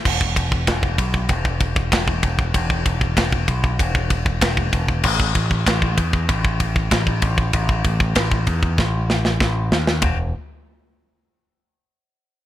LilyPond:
<<
  \new Staff \with { instrumentName = "Picked electric bass" } { \clef bass \time 4/4 \key a \dorian \tempo 4 = 96 e,,8 e,,8 e,,8 b,,8 e,,4 e,,8 e,,8 | e,,8 e,,8 e,,8 b,,8 e,,4 e,,8 e,,8 | a,,8 a,,8 a,,8 e,8 a,,4 a,,8 a,,8 | a,,8 a,,8 a,,8 e,8 a,,4 a,,8 dis,8 |
e,,8 r2. r8 | }
  \new DrumStaff \with { instrumentName = "Drums" } \drummode { \time 4/4 <cymc bd>16 bd16 <bd cymr>16 bd16 <bd cymr sn>16 bd16 <bd cymr>16 bd16 <bd cymr>16 bd16 <bd cymr>16 bd16 <bd cymr sn>16 bd16 <bd cymr>16 bd16 | <bd cymr>16 bd16 <bd cymr>16 bd16 <bd cymr sn>16 bd16 <bd cymr>16 bd16 <bd cymr>16 bd16 <bd cymr>16 bd16 <bd cymr sn>16 bd16 <bd cymr>16 bd16 | <cymc bd>16 bd16 <bd cymr>16 bd16 <bd cymr sn>16 bd16 <bd cymr>16 bd16 <bd cymr>16 bd16 <bd cymr>16 bd16 <bd cymr sn>16 bd16 <bd cymr>16 bd16 | <bd cymr>16 bd16 <bd cymr>16 bd16 <bd cymr sn>16 bd16 <bd cymr>16 bd16 <bd sn>8 sn16 sn16 <bd sn>8 sn16 sn16 |
<bd rb tomfh>4 r4 r4 r4 | }
>>